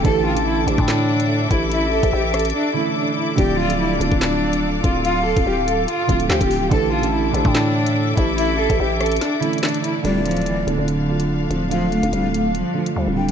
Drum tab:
HH |x-----x-----x---x-----x-----x---|x-----x-----xxxx----------------|x-----x-----x---x-----x-----x---|x-----x-----x---x---x-x---x-o---|
CP |----------------x---------------|--------------------------------|----------------x---------------|------------------------x-------|
SD |----------------o---------------|------------r-------------------|----------------o---------------|------------------------o-------|
BD |o-------------o-------------o---|------o-------------------------|o-------------o-------------o---|------o-------------o-----o-----|

HH |x-----x-----x---x-----x-----x---|x-----x-----xxxxx---x-xxxxx-x---|x---xxxxx---x---x-----x-----x---|x---x-x-x---x---x-----x-------x-|
CP |----------------x---------------|------------------------x-------|--------------------------------|--------------------------------|
SD |----------------o---------------|------------r---o-------o-------|--------------------------------|--------------------------------|
BD |o-------------o-------------o---|------o-------------------------|--------------------------------|--------------------------------|